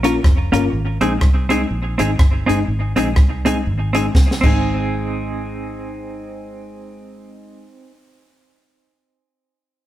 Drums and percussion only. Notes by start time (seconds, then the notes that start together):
0.04 closed hi-hat
0.24 kick, cross-stick
0.54 closed hi-hat
1.01 closed hi-hat
1.21 kick, cross-stick
1.50 closed hi-hat
1.99 closed hi-hat
2.19 kick, cross-stick
2.49 closed hi-hat
2.96 closed hi-hat
3.16 kick, cross-stick
3.46 closed hi-hat
3.95 closed hi-hat
4.15 kick, snare
4.31 snare
4.43 kick, crash